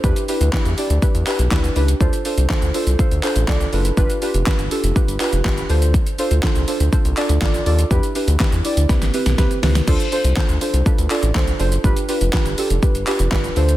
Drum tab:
CC |----------------|----------------|----------------|----------------|
HH |-xox-xox-xox-xox|-xox-xox-xox-xox|-xox-xox-xox-xox|-xox-xox-xox-xox|
SH |xxxxxxxxxxxxxxxx|xxxxxxxxxxxxxxxx|xxxxxxxxxxxxxxxx|xxxxxxxxxxxxxxxx|
CP |----x-----x-x---|----x-----x-x---|----x-----x-x---|----x-----x-x---|
SD |----o-------o---|----o-------o---|----o-------o---|----o-------o---|
BD |o---o---o---o---|o---o---o---o---|o---o---o---o---|o---o---o---o---|

CC |----------------|x---------------|----------------|
HH |-xox-xox-xox-xox|-xox-xox-xox-xox|-xox-xox-xox-xox|
SH |xxxxxxxxxxxxxxxx|xxxxxxxxxxxxxxxx|xxxxxxxxxxxxxxxx|
CP |----x-----------|----x-----x-x---|----x-----x-x---|
SD |----o---oo-oo-oo|----o-------o---|----o-------o---|
BD |o---o---o---o---|o---o---o---o---|o---o---o---o---|